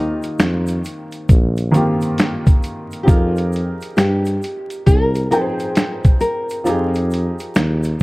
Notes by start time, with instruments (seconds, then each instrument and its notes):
Already playing: tuba D#2, felt piano D#3 A#3 C4 F4 G4, nylon-string guitar D#4
0.23 closed hi-hat, shaker
0.39 tuba F2, finger snap, snare, closed hi-hat, shaker
0.67 closed hi-hat, shaker
0.84 closed hi-hat, shaker
1.12 closed hi-hat, shaker
1.29 tuba A#1, kick, closed hi-hat, shaker
1.57 closed hi-hat, shaker
1.71 felt piano D#3 A#3 C4 F4, closed hi-hat, shaker
1.76 felt piano G4
2.01 closed hi-hat, shaker
2.18 finger snap, snare, closed hi-hat, shaker
2.47 kick, closed hi-hat, shaker
2.63 closed hi-hat, shaker
2.91 closed hi-hat, shaker
3.03 felt piano F3 C4 D#4, nylon-string guitar G4
3.07 tuba F2, nylon-string guitar F4, felt piano G4 G#4 A#4, kick, closed hi-hat, shaker
3.36 closed hi-hat, shaker
3.53 closed hi-hat, shaker
3.81 closed hi-hat, shaker
3.97 tuba G2, nylon-string guitar G4, finger snap, snare, closed hi-hat, shaker
4.25 closed hi-hat, shaker
4.42 closed hi-hat, shaker
4.70 closed hi-hat, shaker
4.86 tuba C2, nylon-string guitar A#4, kick, closed hi-hat, shaker
5.15 closed hi-hat, shaker
5.31 felt piano F3 C4 D#4 G#4 G5, nylon-string guitar G#4, closed hi-hat, shaker
5.35 felt piano B4
5.41 felt piano C5
5.59 closed hi-hat, shaker
5.75 finger snap, snare, closed hi-hat, shaker
6.05 kick, closed hi-hat, shaker
6.21 nylon-string guitar A#4, closed hi-hat, shaker
6.49 closed hi-hat, shaker
6.64 tuba F2, felt piano F3 C4 D#4 G4, nylon-string guitar F4, closed hi-hat, shaker
6.69 felt piano G#4
6.94 closed hi-hat, shaker
7.11 closed hi-hat, shaker
7.39 closed hi-hat, shaker
7.55 tuba D#2, finger snap, snare, closed hi-hat, shaker
7.83 closed hi-hat, shaker